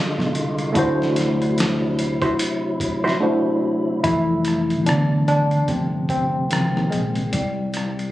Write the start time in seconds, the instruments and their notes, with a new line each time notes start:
Already playing: tonewheel organ D3 G#3 F4, tine electric piano G#3 D4 F4 G4 C5
0.18 fretless electric bass B1, snare
0.35 fretless electric bass C2, closed hi-hat
0.59 closed hi-hat
0.72 fretless electric bass D2, tonewheel organ C3 F#3 E4, tine electric piano A3 D4 E4, kick, closed hi-hat
0.77 tine electric piano F#4 C5
1.02 snare
1.16 snare, closed hi-hat
1.42 closed hi-hat
1.58 snare, closed hi-hat
1.99 closed hi-hat
2.22 hollow-body jazz guitar E4 F#4 C5, kick, closed hi-hat
2.39 closed hi-hat
2.80 kick, closed hi-hat
3.04 hollow-body jazz guitar E4 F#4 C5, snare
3.20 tine electric piano A3 D4 E4 F#4 C5
4.04 fretless electric bass F1, tine electric piano E3 G3 A3 E4, kick, closed hi-hat
4.45 cross-stick, closed hi-hat
4.70 closed hi-hat
4.86 fretless electric bass D2, tine electric piano C3 D3 E3 F#3 B3 D4, cross-stick, closed hi-hat
5.28 tine electric piano D3 D4, closed hi-hat
5.51 closed hi-hat
5.68 fretless electric bass G1, tine electric piano C3 F3 A3 C4, kick, closed hi-hat
6.09 tine electric piano C3 C4, kick, closed hi-hat
6.49 fretless electric bass C#2, tine electric piano D#3 F3 C4, cross-stick, closed hi-hat
6.76 fretless electric bass D#2, cross-stick
6.90 fretless electric bass A#1, tine electric piano G#3 G#4, closed hi-hat
7.15 closed hi-hat
7.32 fretless electric bass C2, tine electric piano G3 G4, kick, closed hi-hat
7.74 cross-stick, closed hi-hat
7.99 closed hi-hat